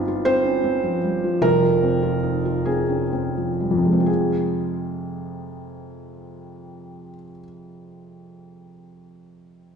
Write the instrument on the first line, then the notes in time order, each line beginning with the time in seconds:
felt piano
Already playing: G1 G2 C4 D#4 F4
0.08 F4
0.25 C4 C5
0.45 C#4
0.64 C4
0.84 F3
1.04 G3
1.24 F3
1.41 F1 F2 A#4
1.63 F4
1.83 C4
2.03 F4
2.23 D#4
2.45 F4
2.65 C4 G#4
2.89 C#4
3.12 C4
3.37 F3
3.60 G3
3.71 F2
3.78 C3
3.84 F3 G#3
3.93 C4
4.00 F4
4.06 G#4